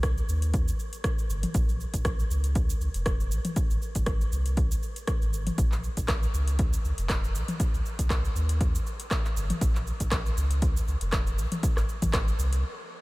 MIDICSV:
0, 0, Header, 1, 3, 480
1, 0, Start_track
1, 0, Tempo, 504202
1, 1471, Time_signature, 4, 2, 24, 8
1, 12388, End_track
2, 0, Start_track
2, 0, Title_t, "Sub bass"
2, 0, Program_c, 0, 38
2, 0, Note_on_c, 0, 36, 93
2, 203, Note_off_c, 0, 36, 0
2, 269, Note_on_c, 0, 39, 82
2, 682, Note_off_c, 0, 39, 0
2, 1229, Note_on_c, 0, 31, 94
2, 1385, Note_off_c, 0, 31, 0
2, 1471, Note_on_c, 0, 34, 97
2, 1760, Note_off_c, 0, 34, 0
2, 1843, Note_on_c, 0, 34, 94
2, 2123, Note_off_c, 0, 34, 0
2, 2189, Note_on_c, 0, 37, 82
2, 2602, Note_off_c, 0, 37, 0
2, 2669, Note_on_c, 0, 37, 79
2, 2750, Note_off_c, 0, 37, 0
2, 2800, Note_on_c, 0, 29, 91
2, 3150, Note_on_c, 0, 34, 87
2, 3165, Note_off_c, 0, 29, 0
2, 3231, Note_off_c, 0, 34, 0
2, 3523, Note_on_c, 0, 32, 94
2, 3588, Note_off_c, 0, 32, 0
2, 3765, Note_on_c, 0, 32, 97
2, 4044, Note_off_c, 0, 32, 0
2, 4110, Note_on_c, 0, 36, 83
2, 4522, Note_off_c, 0, 36, 0
2, 4963, Note_on_c, 0, 32, 80
2, 5243, Note_off_c, 0, 32, 0
2, 5312, Note_on_c, 0, 34, 97
2, 5600, Note_off_c, 0, 34, 0
2, 5684, Note_on_c, 0, 34, 97
2, 5963, Note_off_c, 0, 34, 0
2, 6032, Note_on_c, 0, 37, 82
2, 6443, Note_off_c, 0, 37, 0
2, 6513, Note_on_c, 0, 37, 80
2, 6592, Note_off_c, 0, 37, 0
2, 6644, Note_on_c, 0, 29, 94
2, 6993, Note_on_c, 0, 34, 83
2, 7007, Note_off_c, 0, 29, 0
2, 7072, Note_off_c, 0, 34, 0
2, 7364, Note_on_c, 0, 36, 96
2, 7429, Note_off_c, 0, 36, 0
2, 7606, Note_on_c, 0, 36, 93
2, 7884, Note_off_c, 0, 36, 0
2, 7950, Note_on_c, 0, 39, 85
2, 8362, Note_off_c, 0, 39, 0
2, 8910, Note_on_c, 0, 31, 96
2, 9065, Note_off_c, 0, 31, 0
2, 9151, Note_on_c, 0, 34, 97
2, 9439, Note_off_c, 0, 34, 0
2, 9524, Note_on_c, 0, 34, 93
2, 9803, Note_off_c, 0, 34, 0
2, 9871, Note_on_c, 0, 37, 86
2, 10283, Note_off_c, 0, 37, 0
2, 10351, Note_on_c, 0, 37, 80
2, 10431, Note_off_c, 0, 37, 0
2, 10482, Note_on_c, 0, 29, 91
2, 10830, Note_on_c, 0, 34, 83
2, 10844, Note_off_c, 0, 29, 0
2, 10910, Note_off_c, 0, 34, 0
2, 11204, Note_on_c, 0, 32, 97
2, 11269, Note_off_c, 0, 32, 0
2, 11444, Note_on_c, 0, 32, 94
2, 11723, Note_off_c, 0, 32, 0
2, 11790, Note_on_c, 0, 36, 86
2, 12030, Note_off_c, 0, 36, 0
2, 12388, End_track
3, 0, Start_track
3, 0, Title_t, "Drums"
3, 30, Note_on_c, 9, 37, 106
3, 30, Note_on_c, 9, 42, 43
3, 31, Note_on_c, 9, 36, 117
3, 36, Note_on_c, 9, 69, 54
3, 125, Note_off_c, 9, 37, 0
3, 125, Note_off_c, 9, 42, 0
3, 126, Note_off_c, 9, 36, 0
3, 131, Note_off_c, 9, 69, 0
3, 167, Note_on_c, 9, 69, 52
3, 262, Note_off_c, 9, 69, 0
3, 275, Note_on_c, 9, 69, 93
3, 371, Note_off_c, 9, 69, 0
3, 401, Note_on_c, 9, 42, 53
3, 408, Note_on_c, 9, 69, 52
3, 497, Note_off_c, 9, 42, 0
3, 503, Note_off_c, 9, 69, 0
3, 510, Note_on_c, 9, 42, 41
3, 511, Note_on_c, 9, 36, 123
3, 516, Note_on_c, 9, 69, 55
3, 605, Note_off_c, 9, 42, 0
3, 606, Note_off_c, 9, 36, 0
3, 611, Note_off_c, 9, 69, 0
3, 647, Note_on_c, 9, 69, 91
3, 742, Note_off_c, 9, 69, 0
3, 756, Note_on_c, 9, 69, 55
3, 851, Note_off_c, 9, 69, 0
3, 883, Note_on_c, 9, 42, 50
3, 889, Note_on_c, 9, 69, 51
3, 978, Note_off_c, 9, 42, 0
3, 984, Note_off_c, 9, 69, 0
3, 991, Note_on_c, 9, 36, 123
3, 991, Note_on_c, 9, 37, 106
3, 991, Note_on_c, 9, 42, 41
3, 997, Note_on_c, 9, 69, 54
3, 1086, Note_off_c, 9, 36, 0
3, 1086, Note_off_c, 9, 37, 0
3, 1086, Note_off_c, 9, 42, 0
3, 1092, Note_off_c, 9, 69, 0
3, 1128, Note_on_c, 9, 69, 52
3, 1224, Note_off_c, 9, 69, 0
3, 1237, Note_on_c, 9, 69, 92
3, 1332, Note_off_c, 9, 69, 0
3, 1362, Note_on_c, 9, 42, 52
3, 1362, Note_on_c, 9, 47, 87
3, 1368, Note_on_c, 9, 69, 52
3, 1457, Note_off_c, 9, 42, 0
3, 1457, Note_off_c, 9, 47, 0
3, 1464, Note_off_c, 9, 69, 0
3, 1468, Note_on_c, 9, 42, 41
3, 1471, Note_on_c, 9, 36, 123
3, 1474, Note_on_c, 9, 69, 94
3, 1563, Note_off_c, 9, 42, 0
3, 1566, Note_off_c, 9, 36, 0
3, 1570, Note_off_c, 9, 69, 0
3, 1608, Note_on_c, 9, 69, 53
3, 1703, Note_off_c, 9, 69, 0
3, 1717, Note_on_c, 9, 69, 55
3, 1812, Note_off_c, 9, 69, 0
3, 1843, Note_on_c, 9, 36, 63
3, 1843, Note_on_c, 9, 42, 52
3, 1849, Note_on_c, 9, 69, 94
3, 1939, Note_off_c, 9, 36, 0
3, 1939, Note_off_c, 9, 42, 0
3, 1945, Note_off_c, 9, 69, 0
3, 1951, Note_on_c, 9, 37, 105
3, 1951, Note_on_c, 9, 42, 40
3, 1952, Note_on_c, 9, 36, 121
3, 1957, Note_on_c, 9, 69, 55
3, 2046, Note_off_c, 9, 37, 0
3, 2046, Note_off_c, 9, 42, 0
3, 2047, Note_off_c, 9, 36, 0
3, 2052, Note_off_c, 9, 69, 0
3, 2088, Note_on_c, 9, 69, 53
3, 2183, Note_off_c, 9, 69, 0
3, 2197, Note_on_c, 9, 69, 94
3, 2292, Note_off_c, 9, 69, 0
3, 2321, Note_on_c, 9, 42, 51
3, 2328, Note_on_c, 9, 69, 55
3, 2417, Note_off_c, 9, 42, 0
3, 2423, Note_off_c, 9, 69, 0
3, 2431, Note_on_c, 9, 42, 42
3, 2432, Note_on_c, 9, 36, 122
3, 2437, Note_on_c, 9, 69, 55
3, 2526, Note_off_c, 9, 42, 0
3, 2527, Note_off_c, 9, 36, 0
3, 2532, Note_off_c, 9, 69, 0
3, 2568, Note_on_c, 9, 69, 93
3, 2663, Note_off_c, 9, 69, 0
3, 2676, Note_on_c, 9, 69, 56
3, 2771, Note_off_c, 9, 69, 0
3, 2802, Note_on_c, 9, 42, 53
3, 2808, Note_on_c, 9, 69, 56
3, 2897, Note_off_c, 9, 42, 0
3, 2903, Note_off_c, 9, 69, 0
3, 2911, Note_on_c, 9, 37, 107
3, 2911, Note_on_c, 9, 42, 41
3, 2912, Note_on_c, 9, 36, 120
3, 2917, Note_on_c, 9, 69, 52
3, 3006, Note_off_c, 9, 37, 0
3, 3006, Note_off_c, 9, 42, 0
3, 3008, Note_off_c, 9, 36, 0
3, 3012, Note_off_c, 9, 69, 0
3, 3048, Note_on_c, 9, 69, 52
3, 3143, Note_off_c, 9, 69, 0
3, 3156, Note_on_c, 9, 69, 90
3, 3251, Note_off_c, 9, 69, 0
3, 3282, Note_on_c, 9, 42, 50
3, 3282, Note_on_c, 9, 47, 91
3, 3288, Note_on_c, 9, 69, 54
3, 3377, Note_off_c, 9, 42, 0
3, 3377, Note_off_c, 9, 47, 0
3, 3383, Note_off_c, 9, 69, 0
3, 3390, Note_on_c, 9, 42, 42
3, 3392, Note_on_c, 9, 36, 119
3, 3396, Note_on_c, 9, 69, 91
3, 3485, Note_off_c, 9, 42, 0
3, 3487, Note_off_c, 9, 36, 0
3, 3491, Note_off_c, 9, 69, 0
3, 3527, Note_on_c, 9, 69, 54
3, 3623, Note_off_c, 9, 69, 0
3, 3636, Note_on_c, 9, 69, 53
3, 3731, Note_off_c, 9, 69, 0
3, 3761, Note_on_c, 9, 42, 52
3, 3764, Note_on_c, 9, 36, 62
3, 3767, Note_on_c, 9, 69, 91
3, 3856, Note_off_c, 9, 42, 0
3, 3860, Note_off_c, 9, 36, 0
3, 3862, Note_off_c, 9, 69, 0
3, 3869, Note_on_c, 9, 37, 104
3, 3869, Note_on_c, 9, 42, 42
3, 3872, Note_on_c, 9, 36, 121
3, 3875, Note_on_c, 9, 69, 52
3, 3964, Note_off_c, 9, 37, 0
3, 3964, Note_off_c, 9, 42, 0
3, 3968, Note_off_c, 9, 36, 0
3, 3970, Note_off_c, 9, 69, 0
3, 4008, Note_on_c, 9, 69, 53
3, 4103, Note_off_c, 9, 69, 0
3, 4116, Note_on_c, 9, 69, 97
3, 4211, Note_off_c, 9, 69, 0
3, 4243, Note_on_c, 9, 42, 53
3, 4249, Note_on_c, 9, 69, 53
3, 4338, Note_off_c, 9, 42, 0
3, 4344, Note_off_c, 9, 69, 0
3, 4351, Note_on_c, 9, 42, 43
3, 4353, Note_on_c, 9, 36, 122
3, 4357, Note_on_c, 9, 69, 54
3, 4446, Note_off_c, 9, 42, 0
3, 4448, Note_off_c, 9, 36, 0
3, 4452, Note_off_c, 9, 69, 0
3, 4488, Note_on_c, 9, 69, 92
3, 4583, Note_off_c, 9, 69, 0
3, 4595, Note_on_c, 9, 69, 56
3, 4691, Note_off_c, 9, 69, 0
3, 4724, Note_on_c, 9, 42, 51
3, 4730, Note_on_c, 9, 69, 54
3, 4819, Note_off_c, 9, 42, 0
3, 4825, Note_off_c, 9, 69, 0
3, 4831, Note_on_c, 9, 37, 103
3, 4831, Note_on_c, 9, 42, 43
3, 4833, Note_on_c, 9, 36, 121
3, 4837, Note_on_c, 9, 69, 53
3, 4926, Note_off_c, 9, 37, 0
3, 4926, Note_off_c, 9, 42, 0
3, 4928, Note_off_c, 9, 36, 0
3, 4932, Note_off_c, 9, 69, 0
3, 4968, Note_on_c, 9, 69, 54
3, 5063, Note_off_c, 9, 69, 0
3, 5077, Note_on_c, 9, 69, 93
3, 5172, Note_off_c, 9, 69, 0
3, 5204, Note_on_c, 9, 42, 51
3, 5204, Note_on_c, 9, 47, 95
3, 5210, Note_on_c, 9, 69, 53
3, 5299, Note_off_c, 9, 42, 0
3, 5299, Note_off_c, 9, 47, 0
3, 5305, Note_off_c, 9, 69, 0
3, 5312, Note_on_c, 9, 42, 45
3, 5313, Note_on_c, 9, 36, 122
3, 5318, Note_on_c, 9, 69, 91
3, 5407, Note_off_c, 9, 42, 0
3, 5408, Note_off_c, 9, 36, 0
3, 5414, Note_off_c, 9, 69, 0
3, 5444, Note_on_c, 9, 39, 31
3, 5451, Note_on_c, 9, 69, 52
3, 5540, Note_off_c, 9, 39, 0
3, 5546, Note_off_c, 9, 69, 0
3, 5557, Note_on_c, 9, 69, 50
3, 5652, Note_off_c, 9, 69, 0
3, 5683, Note_on_c, 9, 42, 54
3, 5685, Note_on_c, 9, 36, 59
3, 5689, Note_on_c, 9, 69, 90
3, 5778, Note_off_c, 9, 42, 0
3, 5780, Note_off_c, 9, 36, 0
3, 5785, Note_off_c, 9, 69, 0
3, 5791, Note_on_c, 9, 37, 99
3, 5791, Note_on_c, 9, 39, 102
3, 5791, Note_on_c, 9, 42, 45
3, 5793, Note_on_c, 9, 36, 115
3, 5797, Note_on_c, 9, 69, 52
3, 5887, Note_off_c, 9, 37, 0
3, 5887, Note_off_c, 9, 39, 0
3, 5887, Note_off_c, 9, 42, 0
3, 5888, Note_off_c, 9, 36, 0
3, 5893, Note_off_c, 9, 69, 0
3, 5929, Note_on_c, 9, 69, 52
3, 6024, Note_off_c, 9, 69, 0
3, 6038, Note_on_c, 9, 69, 88
3, 6133, Note_off_c, 9, 69, 0
3, 6164, Note_on_c, 9, 42, 54
3, 6170, Note_on_c, 9, 69, 51
3, 6259, Note_off_c, 9, 42, 0
3, 6265, Note_off_c, 9, 69, 0
3, 6271, Note_on_c, 9, 42, 45
3, 6274, Note_on_c, 9, 36, 124
3, 6277, Note_on_c, 9, 69, 52
3, 6366, Note_off_c, 9, 42, 0
3, 6370, Note_off_c, 9, 36, 0
3, 6373, Note_off_c, 9, 69, 0
3, 6409, Note_on_c, 9, 69, 89
3, 6504, Note_off_c, 9, 69, 0
3, 6519, Note_on_c, 9, 69, 52
3, 6614, Note_off_c, 9, 69, 0
3, 6645, Note_on_c, 9, 42, 55
3, 6651, Note_on_c, 9, 69, 52
3, 6740, Note_off_c, 9, 42, 0
3, 6746, Note_off_c, 9, 69, 0
3, 6754, Note_on_c, 9, 36, 115
3, 6754, Note_on_c, 9, 37, 96
3, 6754, Note_on_c, 9, 39, 105
3, 6754, Note_on_c, 9, 42, 43
3, 6760, Note_on_c, 9, 69, 54
3, 6849, Note_off_c, 9, 36, 0
3, 6849, Note_off_c, 9, 37, 0
3, 6849, Note_off_c, 9, 39, 0
3, 6849, Note_off_c, 9, 42, 0
3, 6856, Note_off_c, 9, 69, 0
3, 6893, Note_on_c, 9, 69, 51
3, 6988, Note_off_c, 9, 69, 0
3, 6999, Note_on_c, 9, 69, 88
3, 7094, Note_off_c, 9, 69, 0
3, 7124, Note_on_c, 9, 42, 55
3, 7124, Note_on_c, 9, 47, 91
3, 7130, Note_on_c, 9, 69, 52
3, 7219, Note_off_c, 9, 42, 0
3, 7219, Note_off_c, 9, 47, 0
3, 7225, Note_off_c, 9, 69, 0
3, 7233, Note_on_c, 9, 42, 45
3, 7234, Note_on_c, 9, 36, 116
3, 7239, Note_on_c, 9, 69, 89
3, 7328, Note_off_c, 9, 42, 0
3, 7329, Note_off_c, 9, 36, 0
3, 7334, Note_off_c, 9, 69, 0
3, 7371, Note_on_c, 9, 69, 50
3, 7466, Note_off_c, 9, 69, 0
3, 7479, Note_on_c, 9, 69, 51
3, 7574, Note_off_c, 9, 69, 0
3, 7605, Note_on_c, 9, 36, 59
3, 7606, Note_on_c, 9, 42, 57
3, 7612, Note_on_c, 9, 69, 85
3, 7701, Note_off_c, 9, 36, 0
3, 7701, Note_off_c, 9, 42, 0
3, 7708, Note_off_c, 9, 69, 0
3, 7713, Note_on_c, 9, 36, 111
3, 7715, Note_on_c, 9, 37, 99
3, 7715, Note_on_c, 9, 39, 106
3, 7715, Note_on_c, 9, 42, 48
3, 7721, Note_on_c, 9, 69, 51
3, 7809, Note_off_c, 9, 36, 0
3, 7810, Note_off_c, 9, 37, 0
3, 7810, Note_off_c, 9, 39, 0
3, 7810, Note_off_c, 9, 42, 0
3, 7816, Note_off_c, 9, 69, 0
3, 7852, Note_on_c, 9, 69, 49
3, 7947, Note_off_c, 9, 69, 0
3, 7959, Note_on_c, 9, 69, 85
3, 8054, Note_off_c, 9, 69, 0
3, 8085, Note_on_c, 9, 42, 58
3, 8091, Note_on_c, 9, 69, 49
3, 8180, Note_off_c, 9, 42, 0
3, 8186, Note_off_c, 9, 69, 0
3, 8193, Note_on_c, 9, 36, 119
3, 8193, Note_on_c, 9, 42, 45
3, 8199, Note_on_c, 9, 69, 53
3, 8288, Note_off_c, 9, 36, 0
3, 8289, Note_off_c, 9, 42, 0
3, 8295, Note_off_c, 9, 69, 0
3, 8332, Note_on_c, 9, 69, 88
3, 8427, Note_off_c, 9, 69, 0
3, 8439, Note_on_c, 9, 69, 52
3, 8535, Note_off_c, 9, 69, 0
3, 8564, Note_on_c, 9, 42, 57
3, 8570, Note_on_c, 9, 69, 51
3, 8659, Note_off_c, 9, 42, 0
3, 8666, Note_off_c, 9, 69, 0
3, 8672, Note_on_c, 9, 36, 116
3, 8673, Note_on_c, 9, 37, 99
3, 8673, Note_on_c, 9, 39, 102
3, 8673, Note_on_c, 9, 42, 46
3, 8680, Note_on_c, 9, 69, 50
3, 8768, Note_off_c, 9, 36, 0
3, 8769, Note_off_c, 9, 37, 0
3, 8769, Note_off_c, 9, 39, 0
3, 8769, Note_off_c, 9, 42, 0
3, 8775, Note_off_c, 9, 69, 0
3, 8804, Note_on_c, 9, 39, 32
3, 8811, Note_on_c, 9, 69, 50
3, 8900, Note_off_c, 9, 39, 0
3, 8906, Note_off_c, 9, 69, 0
3, 8918, Note_on_c, 9, 69, 89
3, 9013, Note_off_c, 9, 69, 0
3, 9044, Note_on_c, 9, 42, 57
3, 9044, Note_on_c, 9, 47, 92
3, 9050, Note_on_c, 9, 69, 49
3, 9139, Note_off_c, 9, 42, 0
3, 9139, Note_off_c, 9, 47, 0
3, 9145, Note_off_c, 9, 69, 0
3, 9152, Note_on_c, 9, 36, 114
3, 9152, Note_on_c, 9, 42, 46
3, 9159, Note_on_c, 9, 69, 87
3, 9247, Note_off_c, 9, 36, 0
3, 9248, Note_off_c, 9, 42, 0
3, 9254, Note_off_c, 9, 69, 0
3, 9285, Note_on_c, 9, 39, 31
3, 9291, Note_on_c, 9, 69, 50
3, 9380, Note_off_c, 9, 39, 0
3, 9386, Note_off_c, 9, 69, 0
3, 9397, Note_on_c, 9, 69, 50
3, 9492, Note_off_c, 9, 69, 0
3, 9522, Note_on_c, 9, 42, 56
3, 9524, Note_on_c, 9, 36, 59
3, 9528, Note_on_c, 9, 69, 86
3, 9617, Note_off_c, 9, 42, 0
3, 9619, Note_off_c, 9, 36, 0
3, 9623, Note_off_c, 9, 69, 0
3, 9629, Note_on_c, 9, 37, 99
3, 9629, Note_on_c, 9, 39, 104
3, 9629, Note_on_c, 9, 42, 48
3, 9632, Note_on_c, 9, 36, 113
3, 9635, Note_on_c, 9, 69, 51
3, 9724, Note_off_c, 9, 37, 0
3, 9724, Note_off_c, 9, 39, 0
3, 9724, Note_off_c, 9, 42, 0
3, 9727, Note_off_c, 9, 36, 0
3, 9731, Note_off_c, 9, 69, 0
3, 9768, Note_on_c, 9, 69, 49
3, 9864, Note_off_c, 9, 69, 0
3, 9876, Note_on_c, 9, 69, 86
3, 9971, Note_off_c, 9, 69, 0
3, 10002, Note_on_c, 9, 42, 57
3, 10008, Note_on_c, 9, 69, 49
3, 10097, Note_off_c, 9, 42, 0
3, 10103, Note_off_c, 9, 69, 0
3, 10110, Note_on_c, 9, 42, 46
3, 10112, Note_on_c, 9, 36, 115
3, 10116, Note_on_c, 9, 69, 49
3, 10205, Note_off_c, 9, 42, 0
3, 10207, Note_off_c, 9, 36, 0
3, 10212, Note_off_c, 9, 69, 0
3, 10250, Note_on_c, 9, 69, 86
3, 10345, Note_off_c, 9, 69, 0
3, 10358, Note_on_c, 9, 69, 51
3, 10453, Note_off_c, 9, 69, 0
3, 10482, Note_on_c, 9, 42, 59
3, 10489, Note_on_c, 9, 69, 50
3, 10578, Note_off_c, 9, 42, 0
3, 10584, Note_off_c, 9, 69, 0
3, 10591, Note_on_c, 9, 37, 102
3, 10591, Note_on_c, 9, 39, 102
3, 10591, Note_on_c, 9, 42, 46
3, 10593, Note_on_c, 9, 36, 111
3, 10597, Note_on_c, 9, 69, 50
3, 10686, Note_off_c, 9, 37, 0
3, 10686, Note_off_c, 9, 39, 0
3, 10686, Note_off_c, 9, 42, 0
3, 10688, Note_off_c, 9, 36, 0
3, 10692, Note_off_c, 9, 69, 0
3, 10728, Note_on_c, 9, 69, 50
3, 10823, Note_off_c, 9, 69, 0
3, 10838, Note_on_c, 9, 69, 87
3, 10933, Note_off_c, 9, 69, 0
3, 10965, Note_on_c, 9, 42, 59
3, 10965, Note_on_c, 9, 47, 89
3, 10971, Note_on_c, 9, 69, 49
3, 11060, Note_off_c, 9, 42, 0
3, 11060, Note_off_c, 9, 47, 0
3, 11066, Note_off_c, 9, 69, 0
3, 11073, Note_on_c, 9, 36, 117
3, 11073, Note_on_c, 9, 42, 46
3, 11079, Note_on_c, 9, 69, 88
3, 11168, Note_off_c, 9, 36, 0
3, 11168, Note_off_c, 9, 42, 0
3, 11174, Note_off_c, 9, 69, 0
3, 11204, Note_on_c, 9, 37, 62
3, 11204, Note_on_c, 9, 39, 30
3, 11210, Note_on_c, 9, 69, 50
3, 11299, Note_off_c, 9, 37, 0
3, 11299, Note_off_c, 9, 39, 0
3, 11305, Note_off_c, 9, 69, 0
3, 11318, Note_on_c, 9, 69, 49
3, 11413, Note_off_c, 9, 69, 0
3, 11444, Note_on_c, 9, 42, 57
3, 11444, Note_on_c, 9, 47, 76
3, 11445, Note_on_c, 9, 36, 60
3, 11450, Note_on_c, 9, 69, 88
3, 11539, Note_off_c, 9, 42, 0
3, 11539, Note_off_c, 9, 47, 0
3, 11540, Note_off_c, 9, 36, 0
3, 11545, Note_off_c, 9, 69, 0
3, 11552, Note_on_c, 9, 37, 109
3, 11552, Note_on_c, 9, 39, 100
3, 11552, Note_on_c, 9, 42, 48
3, 11553, Note_on_c, 9, 36, 110
3, 11558, Note_on_c, 9, 69, 50
3, 11647, Note_off_c, 9, 37, 0
3, 11647, Note_off_c, 9, 39, 0
3, 11647, Note_off_c, 9, 42, 0
3, 11649, Note_off_c, 9, 36, 0
3, 11653, Note_off_c, 9, 69, 0
3, 11690, Note_on_c, 9, 69, 50
3, 11785, Note_off_c, 9, 69, 0
3, 11798, Note_on_c, 9, 69, 88
3, 11894, Note_off_c, 9, 69, 0
3, 11925, Note_on_c, 9, 42, 56
3, 11931, Note_on_c, 9, 69, 51
3, 12020, Note_off_c, 9, 42, 0
3, 12026, Note_off_c, 9, 69, 0
3, 12388, End_track
0, 0, End_of_file